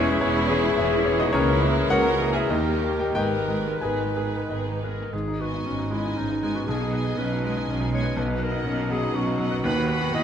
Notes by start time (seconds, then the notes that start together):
Already playing: E1 E2 E3 G#3 C#4 E4 G#4 C#5 E5
0.07 G#3 E4
0.21 E1 E2 E3 C#4 G#4 C#5
0.35 G#3 E4
0.49 E3 C#4 G#4
0.64 G#3 E4
0.77 E1 E2 E3 C#4 G#4 E5
0.92 G#3 E4
1.05 E3 C#4 G#4 C#5
1.19 G#3 D#4 E4 F#4 D#5
1.32 C#2 E3 A#3 C#4 E4 A#4 C#5
1.48 G#3 C#4 E4
1.61 E3 G#3 A#3 C#4
1.76 G#3 C#4 E4
1.89 C#2 E3 A#3 F#4 G#4 A#4 C#5 F#5
1.93 C#4
2.04 G#3 C#4 E4
2.19 E3 A#3 C#4 G#4
2.34 G#3 C#4 E4 G#4 E5
2.49 D#2 D#3 A#3 D#4 G4 A#4 D#5
2.67 G3 D#4
2.82 D#3 A#3 D#4 G4 A#4
2.96 G3 A#4 G5
3.00 D#4 G4 A#4
3.12 G#2 G#3 B3 G4 A#4 B4 G5
3.16 G#1 D#4 G#4 B4 D#5
3.33 D#3 G#3 D#4
3.48 G#3 B3 G#4
3.65 D#3 G#3 D#4
3.81 G#1 G#2 G#3 B3 G#4 B4 D#5 G#5
3.86 G#4
4.00 D#3 G#3 D#4
4.17 G#3 B3 G#4
4.34 D#3 G#3 D#4
4.50 G#1 G#2 G#3 B3 G#4 D#5
4.67 D#3 G#3 D#4
4.83 G#3 B3 G#4 A#4 B4
5.01 D#3 G#3 D#4
5.13 G#1 G#2 G#4
5.28 D#4
5.38 B3 F#4 B4 D#5
5.43 G#5
5.54 D#4
5.66 G#1 G#2 C#4
5.79 D#4
5.91 G#3 B3 E4 D#5 G#5
6.05 D#4
6.16 G#1 G#2 C#4 D#4
6.29 D#4
6.43 G#3 B3 D#5 G#5
6.55 F#4 B4
6.67 B1 B2 B3 G#4 D#5 G#5
6.81 D#4
6.93 B3 B4 D#5 G#5
7.04 D#4
7.17 B1 B2 C#4 B4
7.32 D#4
7.43 G#3 B3 D#5 G#5
7.57 D#4
7.68 B1 B2 C#4
7.80 D#4
7.92 G#3 B3 C#5 D#5 G#5
8.03 B4
8.17 B1 B2 B4
8.28 D#4
8.39 B3 A#4 B4 D#5
8.44 F#5
8.52 D#4
8.65 B1 B2 C#4
8.77 D#4
8.90 F#3 B3 G#4 D#5 F#5
9.03 D#4
9.14 B1 B2 C#4 F#4
9.27 D#4
9.38 F#3 B3 D#5 F#5
9.51 B4
9.64 D#2 B3 B4 F#5 B5
9.78 F#4
9.88 B3 B4 F#5 B5
10.01 F#4
10.13 D#2 E4 D#5